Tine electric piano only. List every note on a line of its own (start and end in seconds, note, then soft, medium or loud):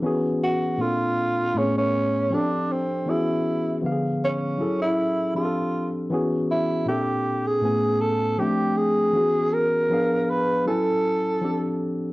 0.02 0.79 E3 medium
0.02 0.79 B3 medium
0.02 0.80 C#4 medium
0.02 0.80 F#4 medium
0.06 0.81 G#4 medium
0.78 1.54 A#2 medium
0.78 1.55 A#3 medium
0.78 1.55 C4 medium
0.78 1.56 D4 soft
0.82 1.56 A4 medium
1.54 2.30 A2 medium
1.54 2.31 A3 medium
1.54 2.31 B3 soft
1.54 1.63 C4 soft
1.58 2.33 G#4 medium
1.63 2.35 C#4 medium
2.30 3.07 F3 medium
2.30 3.07 C4 medium
2.30 3.08 D4 medium
2.30 3.08 G4 medium
2.34 3.09 A4 medium
3.06 3.82 E3 medium
3.06 3.82 B3 medium
3.06 3.83 C#4 medium
3.06 3.84 F#4 medium
3.10 3.85 G#4 medium
3.82 4.60 D3 medium
3.82 4.59 F3 medium
3.82 4.59 B3 soft
3.82 3.91 G4 soft
3.86 4.61 F5 medium
3.92 4.60 G#4 medium
4.58 5.34 F#3 medium
4.58 5.35 C#4 medium
4.58 5.35 E4 medium
4.58 5.36 G#4 soft
4.58 5.36 A4 medium
5.35 6.11 F3 medium
5.35 6.11 C4 soft
5.35 6.12 D4 soft
5.35 6.12 G4 medium
5.35 5.44 G#4 soft
5.45 6.16 A4 medium
6.10 6.86 E3 medium
6.10 6.87 B3 medium
6.10 6.87 C#4 medium
6.10 6.88 F#4 medium
6.14 6.88 G#4 medium
6.86 7.62 A#2 medium
6.86 7.62 A#3 soft
6.86 7.63 C4 medium
6.86 7.64 D4 soft
6.86 7.64 A4 medium
7.61 8.38 A2 medium
7.61 8.38 A3 soft
7.61 8.39 B3 medium
7.61 8.39 C#4 soft
7.65 8.40 G#5 medium
8.38 9.14 F3 medium
8.38 9.16 A3 medium
8.38 9.15 C4 medium
8.38 9.15 D4 medium
8.38 9.16 G5 medium
9.13 9.90 E3 medium
9.13 9.89 B3 soft
9.13 9.91 C#4 medium
9.13 9.91 F#4 medium
9.17 9.91 G#4 medium
9.90 10.66 F3 medium
9.90 10.67 B3 medium
9.90 10.67 D4 medium
9.90 10.67 G#4 medium
9.90 10.68 F5 medium
10.66 11.42 F#3 medium
10.66 11.43 C#4 medium
10.66 11.43 E4 medium
10.66 11.44 A4 medium
10.66 11.44 G#5 medium
11.42 12.13 F3 medium
11.42 12.13 C4 medium
11.42 12.13 D4 medium
11.42 12.13 G4 medium
11.42 12.13 A4 medium